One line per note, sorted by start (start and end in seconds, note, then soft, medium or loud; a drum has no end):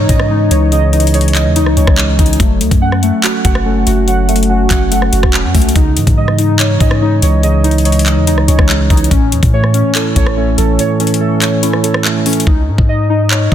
0.00 0.72 C#3 loud
0.00 0.30 E3 medium
0.00 0.29 G#3 medium
0.00 0.30 D#4 loud
0.00 0.93 D#4 loud
0.00 0.50 C#5 medium
0.09 0.49 G#2 loud
0.09 1.14 C#4 medium
0.09 0.71 D#5 medium
0.09 kick medium
0.09 closed hi-hat medium
0.20 cross-stick loud
0.30 1.13 G#3 medium
0.30 0.92 D#4 loud
0.51 1.47 C#2 loud
0.51 0.92 E3 medium
0.51 1.13 C#5 medium
0.51 closed hi-hat medium
0.72 1.77 C#3 loud
0.72 1.34 D#5 medium
0.72 closed hi-hat medium
0.93 1.98 E3 medium
0.93 1.55 D#4 medium
0.93 closed hi-hat soft
1.00 closed hi-hat medium
1.07 closed hi-hat medium
1.14 1.97 G#3 medium
1.14 1.76 C#5 medium
1.14 closed hi-hat medium
1.21 closed hi-hat medium
1.28 closed hi-hat medium
1.35 2.40 D#5 medium
1.35 clap medium
1.35 closed hi-hat medium
1.45 1.63 E2 loud
1.56 2.18 D#4 loud
1.56 2.40 D#4 loud
1.56 closed hi-hat medium
1.61 1.76 C#2 loud
1.66 cross-stick medium
1.77 1.87 C#2 loud
1.77 2.40 C#4 medium
1.77 2.40 C#5 medium
1.77 closed hi-hat medium
1.87 2.18 C#2 loud
1.87 kick loud
1.87 cross-stick loud
1.98 2.40 G#3 loud
1.98 clap loud
2.19 2.39 C#2 loud
2.19 2.40 E3 medium
2.19 2.40 D#4 loud
2.19 kick medium
2.19 closed hi-hat medium
2.26 closed hi-hat medium
2.33 closed hi-hat medium
2.39 2.62 F#1 loud
2.39 3.45 F#3 loud
2.39 3.02 A3 medium
2.39 kick loud
2.39 closed hi-hat medium
2.61 2.71 C#2 loud
2.61 3.66 A3 medium
2.61 closed hi-hat medium
2.71 3.12 F#2 loud
2.71 kick loud
2.71 closed hi-hat medium
2.82 3.65 C#4 medium
2.82 3.43 F#5 medium
2.92 cross-stick medium
3.03 3.64 A3 medium
3.03 closed hi-hat medium
3.24 3.86 F#4 medium
3.24 4.29 F#5 loud
3.24 clap loud
3.24 closed hi-hat medium
3.44 3.85 F#1 loud
3.44 4.50 F#4 medium
3.44 4.07 F#5 medium
3.44 kick medium
3.44 closed hi-hat medium
3.55 cross-stick loud
3.65 4.27 A3 medium
3.65 4.49 C#4 medium
3.87 4.67 F#1 loud
3.87 4.28 A3 medium
3.87 4.48 F#4 medium
3.87 closed hi-hat medium
4.08 5.13 F#3 medium
4.08 4.69 F#5 medium
4.08 closed hi-hat medium
4.28 4.90 A3 medium
4.28 5.34 A3 medium
4.28 closed hi-hat soft
4.36 closed hi-hat medium
4.43 closed hi-hat medium
4.50 5.32 C#4 medium
4.50 5.11 F#4 medium
4.71 5.11 F#1 loud
4.71 5.75 F#5 medium
4.71 kick medium
4.71 clap medium
4.71 closed hi-hat medium
4.91 5.54 A3 medium
4.91 5.76 F#5 medium
4.91 closed hi-hat medium
5.02 cross-stick medium
5.13 5.23 F#1 loud
5.13 5.76 F#4 medium
5.13 closed hi-hat medium
5.23 5.46 E1 loud
5.23 kick loud
5.23 cross-stick loud
5.33 5.75 C#4 medium
5.33 clap loud
5.44 5.54 F#2 loud
5.55 5.75 C#2 loud
5.55 5.76 A3 medium
5.55 kick medium
5.55 closed hi-hat soft
5.55 open hi-hat medium
5.62 closed hi-hat medium
5.69 closed hi-hat medium
5.76 5.98 C#2 loud
5.76 6.81 C#3 loud
5.76 6.37 D#4 medium
5.76 kick loud
5.76 closed hi-hat medium
5.96 6.07 G#2 loud
5.96 7.01 E3 medium
5.96 closed hi-hat medium
6.07 6.78 G#2 loud
6.07 kick loud
6.07 closed hi-hat medium
6.17 7.00 G#3 medium
6.17 6.80 D#5 medium
6.28 cross-stick medium
6.39 7.01 D#4 medium
6.39 closed hi-hat medium
6.59 7.65 D#4 loud
6.59 7.22 C#5 medium
6.59 clap loud
6.59 closed hi-hat medium
6.80 7.21 G#2 loud
6.80 7.85 C#4 medium
6.80 7.42 D#5 medium
6.80 kick medium
6.80 closed hi-hat medium
6.91 cross-stick loud
7.02 7.84 G#3 medium
7.02 7.63 D#4 medium
7.22 8.18 C#2 loud
7.22 7.63 E3 medium
7.22 7.84 C#5 medium
7.22 closed hi-hat medium
7.43 8.48 C#3 loud
7.43 8.05 D#5 medium
7.43 closed hi-hat medium
7.64 8.69 E3 medium
7.64 8.26 D#4 loud
7.64 closed hi-hat soft
7.71 closed hi-hat medium
7.78 closed hi-hat medium
7.85 8.68 G#3 medium
7.85 8.47 C#5 medium
7.85 closed hi-hat medium
7.92 closed hi-hat medium
7.99 closed hi-hat medium
8.06 9.11 D#5 medium
8.06 clap medium
8.06 closed hi-hat medium
8.17 8.34 E2 loud
8.27 8.89 D#4 medium
8.27 9.11 D#4 loud
8.27 closed hi-hat medium
8.33 8.48 C#2 loud
8.38 cross-stick medium
8.48 8.58 C#2 loud
8.48 9.11 C#4 medium
8.48 9.11 C#5 medium
8.48 closed hi-hat medium
8.59 8.89 C#2 loud
8.59 kick loud
8.59 cross-stick loud
8.69 9.11 G#3 medium
8.69 clap loud
8.90 9.10 C#2 loud
8.90 9.11 E3 medium
8.90 9.11 D#4 medium
8.90 kick medium
8.90 closed hi-hat medium
8.97 closed hi-hat medium
9.04 closed hi-hat medium
9.11 9.34 A1 loud
9.11 10.16 A2 loud
9.11 9.73 C#4 medium
9.11 kick loud
9.11 closed hi-hat medium
9.32 9.42 E2 loud
9.32 10.37 E3 medium
9.32 closed hi-hat medium
9.43 9.83 A2 loud
9.43 kick loud
9.43 closed hi-hat medium
9.53 10.36 A3 loud
9.53 10.15 C#5 loud
9.64 cross-stick medium
9.74 10.36 C#4 medium
9.74 closed hi-hat medium
9.95 11.00 E4 loud
9.95 10.57 A4 medium
9.95 clap loud
9.95 closed hi-hat medium
10.16 10.56 A1 loud
10.16 11.21 C#4 medium
10.16 10.78 C#5 medium
10.16 kick medium
10.16 closed hi-hat medium
10.27 cross-stick loud
10.37 11.20 A3 medium
10.37 10.99 C#4 medium
10.58 10.78 A1 loud
10.58 10.98 E3 medium
10.58 11.19 A4 medium
10.58 closed hi-hat medium
10.79 11.84 A2 medium
10.79 11.41 C#5 medium
10.79 closed hi-hat medium
11.00 12.05 E3 medium
11.00 11.62 C#4 loud
11.00 closed hi-hat soft
11.07 closed hi-hat medium
11.14 closed hi-hat medium
11.20 12.04 A3 medium
11.20 11.82 A4 medium
11.42 12.47 C#5 medium
11.42 clap medium
11.42 closed hi-hat medium
11.63 12.25 C#4 medium
11.63 12.47 E4 loud
11.63 closed hi-hat medium
11.73 cross-stick medium
11.83 12.47 C#4 medium
11.83 12.47 A4 medium
11.83 closed hi-hat medium
11.94 cross-stick loud
12.05 12.47 A3 medium
12.05 clap loud
12.26 12.47 E3 medium
12.26 12.47 C#4 medium
12.26 closed hi-hat soft
12.26 open hi-hat medium
12.33 closed hi-hat medium
12.40 closed hi-hat medium
12.47 12.69 C#2 loud
12.47 13.09 D#4 medium
12.47 kick loud
12.68 12.78 G#2 loud
12.78 13.49 G#2 loud
12.78 kick loud
12.89 13.50 D#5 medium
13.10 13.55 D#4 loud
13.31 13.55 C#5 medium
13.31 clap loud
13.51 13.55 G#2 loud
13.51 13.55 D#5 medium
13.51 kick medium